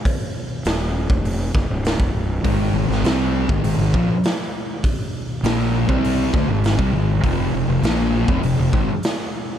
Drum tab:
HH |o---o---o---o---|o---o---o---o---|o---o---o---o---|o---o---o---o---|
SD |----o-----o-o---|---oo-------o---|----o-----o-o---|----o-------o---|
BD |o------o--o--o--|o------o--o-----|o------o--o--o--|o------o--o-----|